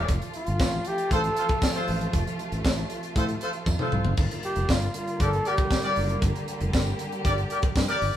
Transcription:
Already playing: F4
0.08 F1 C3 F3 A3, kick, closed hi-hat
0.22 closed hi-hat
0.34 F4, closed hi-hat
0.47 G1, closed hi-hat
0.60 A1, kick, snare, tambourine
0.72 closed hi-hat
0.85 G4, closed hi-hat
0.98 closed hi-hat
1.11 A1 F4 A4 C5, kick, closed hi-hat
1.24 closed hi-hat
1.37 F4 A4 C5, closed hi-hat
1.49 kick, closed hi-hat
1.62 kick, snare, tambourine
1.75 F4 A4 C5, closed hi-hat
1.88 A1, open hi-hat
2.01 closed hi-hat
2.13 F1, kick, closed hi-hat
2.27 closed hi-hat
2.39 closed hi-hat
2.52 A1, closed hi-hat
2.65 A1, kick, snare, tambourine
2.78 closed hi-hat
2.90 closed hi-hat
3.03 closed hi-hat
3.16 A2 F4 A4 C5, kick, closed hi-hat
3.29 closed hi-hat
3.41 F4 A4 C5, closed hi-hat
3.53 closed hi-hat
3.66 F2, kick, high tom, tambourine
3.79 F4 A4 C5, mid tom
3.92 C2, mid tom
4.05 F#1, floor tom
4.17 G1 D3 G3 A#3, kick, crash
4.31 closed hi-hat
4.43 G4, closed hi-hat
4.56 F1, closed hi-hat
4.69 G1 F4, kick, snare, tambourine
4.82 closed hi-hat
4.94 F4, closed hi-hat
5.07 closed hi-hat
5.20 G1 G4 A4 A#4 D5, kick, closed hi-hat
5.33 closed hi-hat
5.45 G4 A#4 D5, closed hi-hat
5.57 kick, closed hi-hat
5.71 kick, snare, tambourine
5.83 G4 A#4 D5, closed hi-hat
5.96 F#1, open hi-hat
6.09 closed hi-hat
6.22 G1 G4, kick, closed hi-hat
6.36 closed hi-hat
6.48 closed hi-hat
6.61 F1, closed hi-hat
6.73 G1, kick, snare, tambourine
6.87 closed hi-hat
6.99 closed hi-hat
7.12 closed hi-hat
7.25 G1 G4 A#4 D5, kick, closed hi-hat
7.38 closed hi-hat
7.50 G4 A#4 D5, closed hi-hat
7.62 kick, closed hi-hat
7.76 G2, kick, snare, tambourine
7.88 G4 A#4 D5, closed hi-hat
8.02 G1, open hi-hat

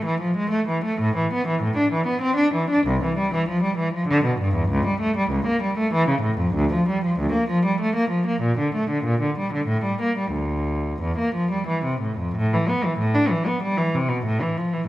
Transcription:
0.05 E3
0.21 F3
0.37 G#3
0.50 A3
0.68 E3
0.84 A3
1.01 A2
1.16 E3
1.33 B3
1.47 E3
1.62 A2
1.77 D4
1.92 E3
2.07 B3
2.22 C4
2.36 D4
2.54 E3
2.70 D4
2.87 C2
3.04 E3
3.18 G3
3.34 E3
3.49 F3
3.63 G3
3.78 E3
3.94 F3
4.08 D3
4.25 B2
4.41 G2
4.55 E2
4.70 C#2
4.86 G3
5.01 A3
5.17 G3
5.31 C#2
5.46 A#3
5.62 G3
5.78 A3
5.93 E3
6.09 C#3
6.22 A2
6.38 F2
6.54 D2
6.73 F3
6.89 G3
7.04 F3
7.20 D2
7.32 A#3
7.50 F3
7.66 G3
7.81 A3
7.96 A#3
8.10 F3
8.27 A#3
8.42 A#2
8.59 D3
8.75 A3
8.90 D3
9.04 A#2
9.22 D3
9.38 G3
9.54 D3
9.67 A2
9.84 G3
10.02 A#3
10.18 G3
10.33 D2
11.02 E2
11.19 A#3
11.35 F3
11.51 G3
11.68 E3
11.85 C3
12.01 A2
12.18 F2
12.36 A2
12.53 E3
12.69 B3
12.85 E3
12.98 A2
13.14 D4
13.30 E3
13.47 B3
13.63 G3
13.78 E3
13.94 C3
14.09 B2
14.25 A2
14.42 E3
14.57 F3
14.73 E3

